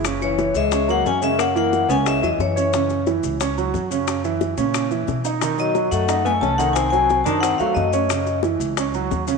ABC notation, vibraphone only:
X:1
M:4/4
L:1/8
Q:1/4=179
K:B
V:1 name="Vibraphone"
z c2 e2 f g e | f f2 g e d c2- | c2 z6 | z8 |
z d2 f2 g =a f | g g2 =a _g ^e _e2- | _e2 z6 |]